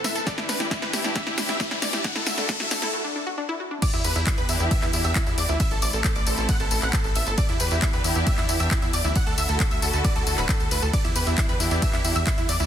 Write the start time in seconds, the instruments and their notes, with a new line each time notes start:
Already playing: string section A2 E3 C4 A4, riser
0.04 synth arpeggio sound E4, supersaw synth E5, snare, open hi-hat, tambourine
0.15 supersaw synth A4, synth arpeggio sound A4, closed hi-hat, tambourine
0.27 string section E2 D4 G4, synth arpeggio sound G4, supersaw synth D5, kick, snare, closed hi-hat, tambourine
0.38 synth arpeggio sound D4, supersaw synth E4, snare, tambourine
0.49 synth arpeggio sound D4, supersaw synth B4, snare, open hi-hat, tambourine
0.60 supersaw synth E4, synth arpeggio sound G4, snare, closed hi-hat, tambourine
0.71 synth arpeggio sound D4, supersaw synth E4, kick, snare, closed hi-hat, tambourine
0.82 synth arpeggio sound E4, supersaw synth B4, snare, tambourine
0.93 supersaw synth E4, synth arpeggio sound G4, snare, open hi-hat, tambourine
1.04 synth arpeggio sound D4, supersaw synth E4, snare, closed hi-hat, tambourine
1.16 synth arpeggio sound D4, supersaw synth E5, kick, snare, closed hi-hat, tambourine
1.27 supersaw synth E4, synth arpeggio sound G4, snare, tambourine
1.38 synth arpeggio sound D4, supersaw synth E4, snare, open hi-hat, tambourine
1.49 synth arpeggio sound E4, supersaw synth E5, snare, tambourine
1.60 supersaw synth E4, synth arpeggio sound G4, kick, snare, closed hi-hat, tambourine
1.71 synth arpeggio sound D4, supersaw synth E4, snare, tambourine
1.82 synth arpeggio sound D4, supersaw synth D5, snare, open hi-hat, tambourine
1.93 supersaw synth E4, synth arpeggio sound G4, snare, closed hi-hat, tambourine
2.04 string section D2 D3 E4 F#4, synth arpeggio sound D4, supersaw synth F#5, kick, snare, closed hi-hat, tambourine
2.15 synth arpeggio sound E4, supersaw synth A4, snare, tambourine
2.27 synth arpeggio sound F#4, supersaw synth E5, snare, open hi-hat, tambourine
2.38 synth arpeggio sound D4, supersaw synth A4, snare, closed hi-hat, tambourine
2.49 synth arpeggio sound D4, supersaw synth A4, kick, snare, closed hi-hat, tambourine
2.60 synth arpeggio sound F#4, supersaw synth E5, snare, tambourine
2.71 synth arpeggio sound D4, supersaw synth A4, snare, open hi-hat, tambourine
2.82 synth arpeggio sound E4, supersaw synth A4, snare, closed hi-hat, tambourine
2.93 synth arpeggio sound F#4
3.04 synth arpeggio sound D4
3.16 synth arpeggio sound D4
3.27 synth arpeggio sound F#4
3.38 synth arpeggio sound D4
3.49 synth arpeggio sound E4
3.60 synth arpeggio sound F#4
3.71 synth arpeggio sound D4
3.82 string section E3 B3 D4 G4, supersaw synth D5, synth pluck D6, kick, closed hi-hat, crash, ride, tambourine
3.93 analog synth bass E2, supersaw synth E4, synth pluck E5, closed hi-hat, tambourine
4.04 analog synth bass E2, supersaw synth B4, synth pluck B5, open hi-hat, tambourine
4.15 analog synth bass E2, supersaw synth E4, synth pluck E5, closed hi-hat, tambourine
4.27 supersaw synth E4, synth pluck E5, kick, clap, closed hi-hat, ride, tambourine
4.38 analog synth bass E2, supersaw synth B4, synth pluck B5, closed hi-hat, tambourine
4.49 analog synth bass E2, supersaw synth E4, synth pluck E5, open hi-hat, tambourine
4.60 analog synth bass E2, supersaw synth E4, synth pluck E5, closed hi-hat, tambourine
4.71 supersaw synth E5, synth pluck E6, kick, closed hi-hat, ride, tambourine
4.82 analog synth bass E2, supersaw synth E4, synth pluck E5, clap, closed hi-hat, tambourine
4.93 analog synth bass E2, supersaw synth E4, synth pluck E5, open hi-hat, tambourine
5.04 analog synth bass E2, supersaw synth E5, synth pluck E6, closed hi-hat, tambourine
5.16 supersaw synth E4, synth pluck E5, kick, clap, closed hi-hat, ride, tambourine
5.27 analog synth bass E2, supersaw synth E4, synth pluck E5, closed hi-hat, tambourine
5.38 analog synth bass E2, supersaw synth D5, synth pluck D6, open hi-hat, tambourine
5.49 analog synth bass D2, supersaw synth E4, synth pluck E5, closed hi-hat, tambourine
5.60 string section A3 C4 E4, supersaw synth E5, synth pluck E6, kick, closed hi-hat, ride, tambourine
5.71 analog synth bass A1, supersaw synth A4, synth pluck A5, closed hi-hat, tambourine
5.82 analog synth bass A1, supersaw synth D5, synth pluck D6, open hi-hat, tambourine
5.93 analog synth bass A1, supersaw synth A4, synth pluck A5, closed hi-hat, tambourine
6.04 supersaw synth A4, synth pluck A5, kick, clap, closed hi-hat, ride, tambourine
6.16 analog synth bass A1, supersaw synth D5, synth pluck D6, closed hi-hat, tambourine
6.27 analog synth bass A1, supersaw synth A4, synth pluck A5, open hi-hat, tambourine
6.38 analog synth bass A1, supersaw synth A4, synth pluck A5, closed hi-hat, tambourine
6.49 supersaw synth F#5, synth pluck F#6, kick, closed hi-hat, ride, tambourine
6.60 analog synth bass A1, supersaw synth A4, synth pluck A5, closed hi-hat, tambourine
6.71 analog synth bass A1, supersaw synth A4, synth pluck A5, open hi-hat, tambourine
6.82 analog synth bass A1, supersaw synth F#5, synth pluck F#6, clap, closed hi-hat, tambourine
6.93 supersaw synth A4, synth pluck A5, kick, clap, closed hi-hat, ride, tambourine
7.04 analog synth bass A1, supersaw synth A4, synth pluck A5, closed hi-hat, tambourine
7.15 analog synth bass A1, supersaw synth E5, synth pluck E6, open hi-hat, tambourine
7.27 analog synth bass G1, supersaw synth A4, synth pluck A5, closed hi-hat, tambourine
7.38 string section E3 B3 D4 G4, supersaw synth D5, synth pluck D6, kick, closed hi-hat, ride, tambourine
7.49 analog synth bass E2, supersaw synth E4, synth pluck E5, closed hi-hat, tambourine
7.60 analog synth bass E2, supersaw synth B4, synth pluck B5, open hi-hat, tambourine
7.71 analog synth bass E2, supersaw synth E4, synth pluck E5, closed hi-hat, tambourine
7.82 supersaw synth E4, synth pluck E5, kick, clap, closed hi-hat, ride, tambourine
7.93 analog synth bass E2, supersaw synth B4, synth pluck B5, closed hi-hat, tambourine
8.04 analog synth bass E2, supersaw synth E4, synth pluck E5, open hi-hat, tambourine
8.15 analog synth bass E2, supersaw synth E4, synth pluck E5, tambourine
8.26 supersaw synth E5, synth pluck E6, kick, closed hi-hat, ride, tambourine
8.38 analog synth bass E2, supersaw synth E4, synth pluck E5, clap, closed hi-hat, tambourine
8.49 analog synth bass E2, supersaw synth E4, synth pluck E5, open hi-hat, tambourine
8.60 analog synth bass E2, supersaw synth E5, synth pluck E6, closed hi-hat, tambourine
8.71 supersaw synth E4, synth pluck E5, kick, clap, closed hi-hat, ride, tambourine
8.82 analog synth bass E2, supersaw synth E4, synth pluck E5, closed hi-hat, tambourine
8.93 analog synth bass E2, supersaw synth D5, synth pluck D6, open hi-hat, tambourine
9.04 analog synth bass D2, supersaw synth E4, synth pluck E5, closed hi-hat, tambourine
9.16 string section D3 A3 E4 F#4, supersaw synth F#5, synth pluck F#6, kick, closed hi-hat, ride, tambourine
9.27 analog synth bass D2, supersaw synth A4, synth pluck A5, closed hi-hat, tambourine
9.38 analog synth bass D2, supersaw synth E5, synth pluck E6, open hi-hat, tambourine
9.49 analog synth bass D2, supersaw synth A4, synth pluck A5, closed hi-hat, tambourine
9.60 supersaw synth A4, synth pluck A5, kick, clap, closed hi-hat, ride, tambourine
9.71 analog synth bass D2, supersaw synth E5, synth pluck E6, closed hi-hat, tambourine
9.82 analog synth bass D2, supersaw synth A4, synth pluck A5, open hi-hat, tambourine
9.93 analog synth bass D2, supersaw synth A4, synth pluck A5, closed hi-hat, tambourine
10.04 supersaw synth D5, synth pluck D6, kick, closed hi-hat, ride, tambourine
10.16 analog synth bass D2, supersaw synth A4, synth pluck A5, closed hi-hat, tambourine
10.27 analog synth bass D2, supersaw synth A4, synth pluck A5, open hi-hat, tambourine
10.38 analog synth bass D1, supersaw synth B4, synth pluck B5, clap, closed hi-hat, tambourine
10.49 supersaw synth A4, synth pluck A5, kick, clap, closed hi-hat, ride, tambourine
10.60 analog synth bass D2, supersaw synth A4, synth pluck A5, closed hi-hat, tambourine
10.71 analog synth bass D2, supersaw synth B4, synth pluck B5, open hi-hat, tambourine
10.82 analog synth bass D2, supersaw synth A4, synth pluck A5, closed hi-hat, tambourine
10.93 string section E3 B3 D4 G4, supersaw synth D5, synth pluck D6, kick, closed hi-hat, ride, tambourine
11.05 analog synth bass E2, supersaw synth E4, synth pluck E5, closed hi-hat, tambourine
11.16 analog synth bass E2, supersaw synth B4, synth pluck B5, open hi-hat, tambourine
11.27 analog synth bass E2, supersaw synth E4, synth pluck E5, closed hi-hat, tambourine
11.38 supersaw synth E4, synth pluck E5, kick, clap, closed hi-hat, ride, tambourine
11.49 analog synth bass E2, supersaw synth B4, synth pluck B5, closed hi-hat, tambourine
11.60 analog synth bass E2, supersaw synth E4, synth pluck E5, open hi-hat, tambourine
11.71 analog synth bass E2, supersaw synth E4, synth pluck E5, closed hi-hat, tambourine
11.82 supersaw synth E5, synth pluck E6, kick, closed hi-hat, ride, tambourine
11.93 analog synth bass E2, supersaw synth E4, synth pluck E5, clap, closed hi-hat, tambourine
12.04 analog synth bass E2, supersaw synth E4, synth pluck E5, open hi-hat, tambourine
12.16 analog synth bass E2, supersaw synth E5, synth pluck E6, closed hi-hat, tambourine
12.27 supersaw synth E4, synth pluck E5, kick, clap, closed hi-hat, ride, tambourine
12.38 analog synth bass E2, supersaw synth E4, synth pluck E5, closed hi-hat, tambourine
12.49 analog synth bass E2, supersaw synth D5, synth pluck D6, open hi-hat, tambourine
12.60 analog synth bass D2, supersaw synth E4, synth pluck E5, closed hi-hat, tambourine